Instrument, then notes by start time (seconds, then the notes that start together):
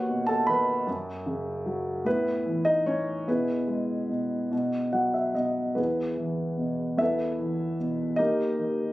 grand piano
Already playing: D#2 F#4 B4 C#5 F#5
0.09 B2
0.27 A4 A5
0.47 D#3 B4 B5
0.87 F#2
1.26 C#3
1.66 F#3
2.05 A2 B3 E4 B4
2.46 E3
2.65 D#4 D#5
2.85 A2 C#4 C#5
3.28 B2 B3 E4 G#4 B4
3.67 G#3
4.09 B2
4.51 B2
4.93 F#3 F#5
5.14 E5
5.35 B2 D#5
5.75 E2 B3 E4 G#4 B4
6.17 E3
6.57 B2
6.97 E2 E4 B4 E5
7.01 A4
7.39 E3
7.80 B2
8.16 D#2 D#4 G4 A#4 D#5
8.58 D#3